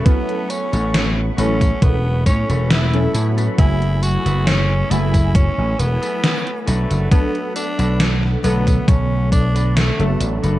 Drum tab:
HH |xxxxx-xxx-xxxxxx|xxxxx-xxx-xxxxxx|xxxxx-xxx-xxxxxx|
TB |x-xxx-xxx-xxx-xx|x-xxx-xxx-xxx-xx|x-xxx-xxx-xxx-xx|
SD |----o-------o---|----o-------o---|----oo------o---|
BD |o------oo-o-----|o------oo-------|o------oo-o-----|